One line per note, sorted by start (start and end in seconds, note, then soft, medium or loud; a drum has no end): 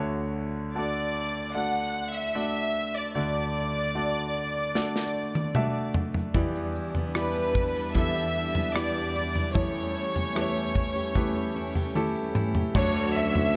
0.00 3.11 D2 medium
0.00 3.11 D3 medium
0.00 0.71 A3 medium
0.00 0.71 D4 soft
0.00 0.71 F#4 medium
0.00 0.71 C#5 medium
0.00 0.13 E5 soft
0.75 1.51 A3 medium
0.75 1.51 D4 soft
0.75 1.51 F#4 soft
0.75 1.51 A4 medium
0.75 1.52 D5 medium
1.54 2.31 A3 soft
1.54 2.31 D4 soft
1.54 2.31 F#4 soft
1.54 2.31 D5 medium
1.54 2.15 F#5 medium
2.15 2.95 E5 medium
2.35 3.11 A3 soft
2.35 3.11 D4 soft
2.35 3.11 F#4 soft
2.35 3.11 D5 medium
2.95 3.13 D5 medium
3.14 6.31 D2 soft
3.14 6.31 D3 soft
3.14 3.91 A3 medium
3.14 3.91 D4 soft
3.14 3.91 F#4 soft
3.14 5.91 D5 medium
3.14 3.91 D5 medium
3.95 4.71 A3 soft
3.95 4.71 D4 soft
3.95 4.71 F#4 soft
3.95 4.71 D5 medium
4.75 5.51 A3 medium
4.75 5.51 D4 medium
4.75 5.51 F#4 soft
4.75 5.52 D5 medium
4.75 snare soft
4.96 snare soft
5.35 high tom medium
5.55 6.31 A3 medium
5.55 6.31 D4 medium
5.55 6.31 F#4 medium
5.55 6.31 E5 medium
5.55 mid tom medium
5.94 floor tom medium
6.14 floor tom medium
6.34 12.71 E2 medium
6.34 9.51 E2 medium
6.34 9.51 E3 medium
6.34 9.52 E3 soft
6.34 7.95 E3 medium
6.34 12.71 G3 medium
6.34 7.11 B3 medium
6.34 9.52 D4 medium
6.34 7.11 E4 medium
6.34 7.11 G4 medium
6.34 7.11 D5 medium
6.34 kick medium
6.34 floor tom medium
6.56 6.94 B3 soft
6.76 7.15 E4 soft
6.95 7.34 B3 soft
6.95 floor tom soft
7.15 7.91 B3 medium
7.15 7.91 E4 soft
7.15 7.55 E4 soft
7.15 7.91 G4 soft
7.15 7.91 B4 medium
7.15 7.91 D5 medium
7.15 cross-stick medium
7.36 7.74 B3 soft
7.55 8.35 E4 soft
7.55 kick medium
7.55 floor tom soft
7.76 8.14 B3 soft
7.95 11.45 E3 medium
7.95 8.71 B3 medium
7.95 8.71 E4 soft
7.95 8.71 G4 soft
7.95 8.71 A4 medium
7.95 8.76 E5 medium
7.95 kick medium
7.95 floor tom soft
8.15 8.54 B3 soft
8.35 8.75 E4 medium
8.55 8.94 B3 soft
8.55 floor tom medium
8.75 9.51 B3 medium
8.75 9.51 E4 soft
8.75 9.15 E4 soft
8.75 9.51 G4 soft
8.75 9.51 D5 medium
8.75 9.56 D5 medium
8.75 cross-stick medium
8.95 9.34 B3 soft
9.15 9.95 E4 medium
9.35 9.63 B3 soft
9.35 floor tom soft
9.55 11.15 E2 medium
9.55 12.71 E2 soft
9.55 12.71 E3 soft
9.55 10.31 A3 medium
9.55 12.72 A3 soft
9.55 12.72 C#4 medium
9.55 10.31 E4 soft
9.55 10.31 G4 soft
9.55 10.31 C#5 medium
9.55 11.92 C#5 medium
9.55 kick medium
9.55 floor tom medium
9.75 10.14 G4 soft
9.95 10.34 E4 medium
10.15 10.55 G4 soft
10.15 floor tom soft
10.35 11.11 A3 medium
10.35 11.11 E4 soft
10.35 10.74 E4 soft
10.35 11.11 G4 soft
10.35 10.42 B4 soft
10.35 cross-stick medium
10.42 11.14 C#5 medium
10.56 10.95 G4 soft
10.75 11.55 E4 soft
10.75 kick medium
10.75 floor tom soft
10.96 11.35 G4 soft
11.15 12.83 E2 soft
11.15 11.91 A3 medium
11.15 11.91 E4 medium
11.15 11.91 G4 medium
11.15 11.91 B4 medium
11.15 kick medium
11.15 floor tom soft
11.36 11.75 G4 soft
11.56 11.95 E4 soft
11.75 12.14 G4 soft
11.75 floor tom soft
11.95 12.71 A3 medium
11.95 12.71 E4 medium
11.95 12.34 E4 soft
11.95 12.71 G4 medium
11.95 12.71 A4 medium
11.95 high tom soft
12.15 12.55 G4 soft
12.35 12.76 E4 medium
12.35 mid tom medium
12.55 12.83 G4 soft
12.55 floor tom medium
12.75 13.56 D2 loud
12.75 13.56 D3 medium
12.75 13.56 F#3 medium
12.75 13.51 A3 medium
12.75 13.56 A3 medium
12.75 13.51 D4 medium
12.75 13.51 F#4 medium
12.75 13.56 F#4 medium
12.75 13.55 A4 medium
12.75 13.51 C#5 medium
12.75 13.13 C#5 medium
12.75 kick loud
12.75 floor tom loud
12.75 crash medium
13.16 13.56 C#4 medium
13.16 13.56 E5 medium
13.35 floor tom medium